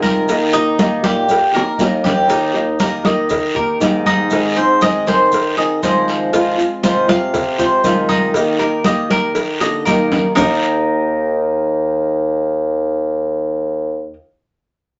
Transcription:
Already playing: C3 D#3 G#3 C4 F4
0.02 A#4, cowbell, high conga, short guiro, maracas
0.28 D#3 A#3 D#4 G4, cowbell, high conga, long guiro, maracas
0.53 A#3 D#4 G4, high conga, maracas
0.78 D#3 A#3 D#4 G4, cowbell, high conga, short guiro, maracas
1.03 A#2 A#3 D#4 G4, cowbell, high conga, short guiro, maracas
1.29 muted nylon-string guitar stroke, cowbell, high conga, long guiro, maracas
1.52 A#3 D#4 G4 A#4, high bongo, high conga
1.78 D#2 D#3 A#3 D#4 G4, cowbell, high bongo, high conga, short guiro, maracas
2.04 G4, cowbell, low bongo, high conga, short guiro, maracas
2.28 D#3 A#3 D#4 G4, cowbell, high conga, long guiro, maracas
2.54 A#3 D#4 G4, high conga
2.80 D#3 A#3 D#4 G4 A#4, cowbell, high conga, short guiro, maracas
3.04 D#3 A#3 D#4 G4 D#5, high conga, short guiro, maracas
3.29 muted nylon-string guitar stroke, cowbell, high conga, low conga, long guiro, maracas
3.55 A#3 D#4 G4 A#4, high conga, low conga
3.80 G#2 D#3 A#3 D#4 G4, cowbell, high conga, short guiro, maracas
4.06 D#4, cowbell, high conga, short guiro, maracas
4.30 D#3 G#3 C4 D#4 G#4, cowbell, high conga, long guiro, maracas
4.56 C4 D#4 G#4 C5, high conga
4.81 D#3 G#3 C4 D#4 G#4 D#5, cowbell, high conga, short guiro, maracas
5.06 D#3 C4 D#4 G#4 C5, cowbell, high conga, short guiro, maracas
5.32 muted nylon-string guitar stroke, cowbell, high conga, long guiro, maracas
5.57 D#3 C4 D#4 G#4 D#5, high conga
5.82 D#3 F3 G#3 C4 D#4 G#4 C5, cowbell, high conga, short guiro, maracas
6.08 cowbell, short guiro, maracas
6.33 C3 D#3 G#3 C4 F4, cowbell, high conga, long guiro, maracas
6.58 G#3 C4 F4, high conga, maracas
6.83 C3 D#3 G#3 C4 F4 C5, cowbell, high conga, short guiro, maracas
7.08 C3 G#3 C4 F4 F5, high conga, short guiro, maracas
7.33 muted nylon-string guitar stroke, cowbell, high conga, low conga, long guiro, maracas
7.58 G#3 C4 F4 C5, high conga, low conga, maracas
7.84 C3 D#3 G#3 C4 F4, cowbell, high conga, short guiro, maracas
8.09 D#4, cowbell, high conga, short guiro, maracas
8.34 D#3 A#3 D#4 G4, cowbell, high conga, long guiro, maracas
8.59 A#3 D#4 G4 A#4, high conga
8.84 D#3 A#3 D#4 G4 D#5, cowbell, high conga, short guiro, maracas
9.10 D#3 A#3 D#4 G4 A#4, cowbell, high conga, short guiro, maracas
9.35 muted nylon-string guitar stroke, cowbell, high conga, long guiro, maracas
9.60 D3 A#3 D#4 G4 D#5, high bongo, high conga, maracas
9.86 D#3 A#3 D#4 G4 A#4, cowbell, high conga, short guiro, maracas
10.12 cowbell, low bongo, high conga, short guiro, maracas
10.35 D#2 D#3 A#3 D#4 A#4 D#5, low bongo, low conga, long guiro, maracas
10.40 G4

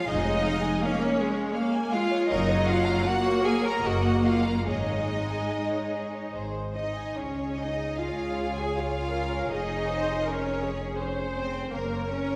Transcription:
0.06 F1 G#3 D#4 G#4 D#5
0.25 C#5
0.43 F5
0.62 G#5
0.82 A#3 C#4 C#5 F5
1.02 C#5
1.18 G#3 G#4
1.37 C#5
1.55 A#3 F5
1.74 G#5
1.92 G#3 F4 F5
2.11 C#5
2.29 F#1 F#3 D#4 A#4 C#5 D#5
2.50 C#5
2.67 F4 F5 F#5
2.85 A#5
3.05 A#3 F#4 F#5
3.25 C#5
3.44 G#4 A#4 G#5
3.64 A#4 C#5 A#5
3.83 F#1 A#3 F#4 A#4 D#5 F#5
4.04 D#5
4.23 F4 F#5
4.28 F5
4.45 A#5
4.66 G#1 G#3 D#4 G#4 C#5
4.70 D#5
4.88 C#5
5.08 D#5
5.29 G#5
5.50 D#5
5.71 C#5
5.92 G#4
6.13 C#5
6.33 G#1 G#4 C5
6.55 C5
6.75 D#4 D#5
6.97 G#5
7.17 C#2 C#4 G#4 C#5
7.58 D#4 D#5
7.99 F4 G#4 F5
8.57 G#4 G#5
8.76 F4 G#4 F5
9.12 A#4
9.51 F1 D#4 G#4 D#5
9.89 C5
10.26 C#4 A#4 C#5
10.63 G#4
10.99 C5
11.36 C4 C5
11.72 F#1 A#3 A#4 C#5
12.09 C#4 C#5

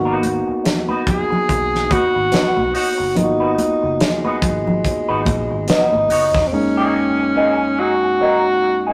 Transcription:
Already playing: G#1 A#3 B3 D#4 F#4
0.05 B3 D#4 F#4 B4
0.23 muted clean electric guitar stroke, closed hi-hat, muted conga, high conga
0.47 muted clean electric guitar stroke, muted fingered electric bass stroke
0.64 muted clean electric guitar stroke, snare, closed hi-hat, muted conga
0.89 B3 D#4 F#4 B4, high conga
1.06 G#4, muted clean electric guitar stroke, kick, closed hi-hat, low conga
1.30 muted clean electric guitar stroke, low conga
1.48 B1, muted clean electric guitar stroke, kick, closed hi-hat, muted conga
1.75 snare
1.90 B3 D#4 F#4 B4, kick, closed hi-hat, high conga
2.14 G#1, muted clean electric guitar stroke
2.32 B3 D#4 F#4 B4, muted fingered electric bass stroke, snare, closed hi-hat, muted conga
2.57 B1, muted clean electric guitar stroke, high conga
2.74 B3 D#4 F#4 C#5, open hi-hat
2.98 F#1, muted clean electric guitar stroke
3.15 G#1 A#3 B3 D#4 F4, muted clean electric guitar stroke, closed hi-hat, low conga
3.23 F#4
3.40 B3 D#4 F#4 B4
3.58 muted clean electric guitar stroke, closed hi-hat, muted conga, high conga
3.82 F#1, muted clean electric guitar stroke
4.00 G#3, muted clean electric guitar stroke, snare, closed hi-hat, muted conga
4.24 B3 D#4 F#4 B4, muted fingered electric bass stroke, high conga
4.42 G#1, muted clean electric guitar stroke, kick, closed hi-hat, low conga
4.67 muted clean electric guitar stroke, low conga
4.85 muted clean electric guitar stroke, kick, closed hi-hat
5.09 G#1 B3 D#4 F#4 B4
5.25 A#1, muted clean electric guitar stroke, kick, closed hi-hat, high conga
5.51 G#1, muted clean electric guitar stroke
5.68 B3 D#4 F#4 B4, snare, closed hi-hat
5.92 G#1, muted clean electric guitar stroke, high conga
6.08 F#1 B3 D#4 F#4 C#5, open hi-hat, muted conga
6.35 E1, muted clean electric guitar stroke, kick, snare
6.47 C4
6.51 F#2 G#3 A#3 C#4 D#4, muted clean electric guitar stroke
6.77 F#3 A#3 D#4 G#4
6.95 muted clean electric guitar stroke
7.19 muted clean electric guitar stroke
7.36 F#3 A#3 D#4 G#4
7.61 muted clean electric guitar stroke
7.78 F#3 A#3 D#4 F#4 G#4
8.03 muted clean electric guitar stroke
8.21 F#3 A#3 D#4 A#4
8.63 muted clean electric guitar stroke
8.87 F#3 A#3 D#4 G#4

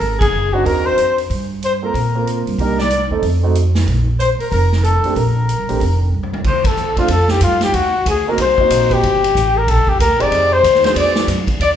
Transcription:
0.00 G#1 A#4, kick, open hi-hat
0.19 G#4, kick, ride
0.33 F#1
0.52 C4 D4 D#4 F#4
0.64 D#2 A#4, kick, open hi-hat
0.86 C5
0.97 F2, closed hi-hat
1.18 open hi-hat
1.30 G2, kick, open hi-hat
1.62 C5, closed hi-hat
1.82 A#3 C4 F4 A4 A#4
1.94 A#2, kick, open hi-hat
2.15 A#3 C4 F4 A#4
2.27 closed hi-hat
2.47 G2, open hi-hat
2.58 C2 A#3 D4 D#4 G4 A#4, kick, open hi-hat
2.79 D5, snare
2.90 closed hi-hat
3.10 D#2 A3 C4 D#4 A4
3.23 F2, kick, open hi-hat
3.43 A3 C4 D#4 F#4
3.55 closed hi-hat
3.75 snare, open hi-hat
3.87 A#1, kick, open hi-hat
4.19 C5, closed hi-hat
4.40 A#4, muted upright bass stroke, open hi-hat
4.51 F1 A#4, kick, open hi-hat
4.72 snare
4.83 A4, closed hi-hat
5.04 A3 C4 D4 G4, muted upright bass stroke, open hi-hat
5.16 A#1 A#4, kick, open hi-hat
5.49 closed hi-hat
5.60 C2
5.69 A1 A3 C4 D4 G4, open hi-hat
5.80 F1, kick, open hi-hat
6.14 C2
6.23 floor tom
6.34 floor tom
6.44 D2 C5, kick, crash
6.64 A4, muted upright bass stroke, kick, ride
6.77 D#2, hi-hat pedal
6.97 A3 C4 D4 F4, kick, ride
7.08 F2 A4, kick, ride
7.13 A4
7.28 G4, snare
7.41 G2 F4, kick, hi-hat pedal, ride
7.61 G4, snare, ride
7.73 D#2 F#4, kick, ride
8.06 D2 G#4, kick, hi-hat pedal, ride
8.10 G#4
8.27 A#3 C4 D#4 F#4 A#4
8.38 C2 C5, kick, ride
8.58 A#3 C4 D#4 F#4, muted upright bass stroke, kick
8.70 A#1, kick, hi-hat pedal, ride
8.90 G4, kick, ride
9.03 G1, kick, ride
9.24 ride
9.35 A1, kick, hi-hat pedal
9.56 A#4
9.67 A#1 A4, kick, ride
9.78 G1
9.87 F1 G4, kick
9.99 D2 A#4, kick, hi-hat pedal, ride
10.10 A#1
10.19 G1 C4 D#4 G4 G#4 D5, ride
10.31 F2, kick, ride
10.52 C5
10.63 D#2, kick, hi-hat pedal, ride
10.75 snare
10.84 B3 D4 F#4 G#4 C5, snare, ride
10.95 E2 D5, kick, ride
11.15 snare
11.27 F#2, kick, hi-hat pedal, ride
11.47 muted upright bass stroke, kick, ride
11.59 D#2 D5, kick, ride

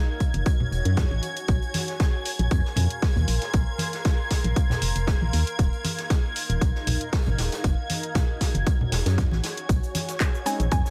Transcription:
Already playing: D#4 F#4 C#5 G#6
0.20 kick, closed hi-hat
0.34 F#1 G#5, closed hi-hat, high conga
0.46 kick, closed hi-hat
0.60 low conga
0.72 E1, closed hi-hat
0.85 F#2, closed hi-hat
0.97 kick, snare, closed hi-hat
1.11 A1, high conga
1.23 closed hi-hat
1.37 closed hi-hat
1.48 A#1 A#4, kick, closed hi-hat
1.62 F5, closed hi-hat
1.74 snare, closed hi-hat, open hi-hat, high conga
1.85 C6, snare, closed hi-hat
2.00 kick, snare, closed hi-hat
2.25 closed hi-hat, open hi-hat
2.39 A#1, closed hi-hat, high conga
2.51 F2, kick, closed hi-hat
2.65 snare
2.76 F2, closed hi-hat, open hi-hat, low conga
2.91 closed hi-hat
3.02 kick, snare, closed hi-hat, open hi-hat
3.16 D#2, closed hi-hat, high conga, low conga
3.28 A#1, closed hi-hat, open hi-hat
3.42 snare, closed hi-hat
3.53 A#1, kick, closed hi-hat
3.78 snare, closed hi-hat, open hi-hat, high conga
3.93 snare, closed hi-hat
4.05 kick, snare, closed hi-hat
4.31 kick, snare, closed hi-hat, open hi-hat
4.44 A#1, closed hi-hat, high conga
4.56 kick, closed hi-hat
4.70 snare, closed hi-hat, low conga
4.82 F1, open hi-hat
4.96 F1, closed hi-hat
5.07 kick, snare, closed hi-hat
5.21 A#1, high conga
5.33 D#2 D#4, closed hi-hat, open hi-hat
5.47 closed hi-hat
5.59 D#1, kick, closed hi-hat
5.73 closed hi-hat
5.84 snare, closed hi-hat, open hi-hat, high conga
5.98 snare, closed hi-hat
6.10 kick, snare, closed hi-hat
6.36 closed hi-hat, open hi-hat
6.49 D#1, closed hi-hat, high conga
6.61 A#1, kick, closed hi-hat
6.75 snare
6.87 A#1, closed hi-hat, open hi-hat, low conga
7.01 closed hi-hat
7.13 kick, snare, closed hi-hat, open hi-hat
7.26 G#1, closed hi-hat, high conga, low conga
7.38 D#1, snare, closed hi-hat, open hi-hat
7.52 snare, closed hi-hat
7.64 F#1 F#4, kick, closed hi-hat
7.90 snare, closed hi-hat, open hi-hat, high conga
8.00 C#5, closed hi-hat
8.15 kick, snare, closed hi-hat, low conga
8.41 G#5, kick, snare, closed hi-hat, open hi-hat
8.54 F#1, closed hi-hat, high conga
8.67 kick, closed hi-hat
8.81 low conga
8.92 E1, snare, closed hi-hat, open hi-hat
9.06 F#2, snare, closed hi-hat
9.18 kick, snare, closed hi-hat
9.31 A1, snare, high conga
9.44 snare, closed hi-hat, open hi-hat
9.57 closed hi-hat
9.69 A#1 A#4 G#6, kick, closed hi-hat, shaker
9.82 D#5, closed hi-hat, shaker
9.95 snare, closed hi-hat, open hi-hat, high conga, shaker
10.08 snare, closed hi-hat, shaker
10.16 C6
10.20 kick, snare, clap, closed hi-hat, shaker
10.35 shaker
10.45 G#3 C4 C#4 D#4 G#5, closed hi-hat, open hi-hat, shaker
10.60 A#1, closed hi-hat, high conga, shaker
10.71 F2 G#5, kick, closed hi-hat, shaker
10.85 snare, shaker

